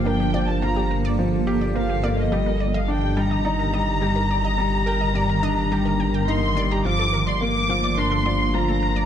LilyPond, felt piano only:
\new Staff \with { instrumentName = "Felt piano" } { \clef bass \time 4/4 \key ees \lydian \tempo 4 = 106 d'8 f8 f8 r8 f8 g'8 f8 bes8 | g8 r8 d'8 g8 ees'8 g8 g8 r8 | g8 bes'8 g8 d'8 g8 r8 ees'8 g8 | f8 r8 bes8 f8 d'8 f8 f8 r8 | }